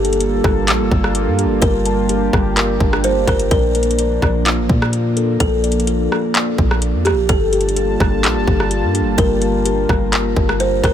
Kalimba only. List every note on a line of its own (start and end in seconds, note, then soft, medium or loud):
0.00 1.11 A4 loud
1.62 3.00 A#4 loud
3.04 3.27 C5 medium
3.28 3.50 A#4 medium
3.51 4.89 A#4 loud
5.40 7.02 A4 loud
7.05 7.28 G4 medium
7.29 8.67 A4 loud
9.18 10.56 A#4 loud
10.60 10.82 C5 medium
10.84 10.94 A#4 medium